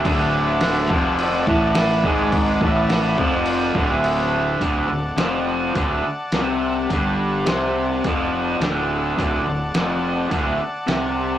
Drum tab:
CC |x-x-x-x-|x-x-x-x-|--------|--------|
HH |--------|--------|o-o-o-o-|o-o-o-o-|
SD |--o---o-|--o-----|--o---o-|--o---o-|
BD |o--o-o-o|oo-o-o--|o---o---|o---o---|

CC |--------|
HH |o-o-o-o-|
SD |--o---o-|
BD |o---o---|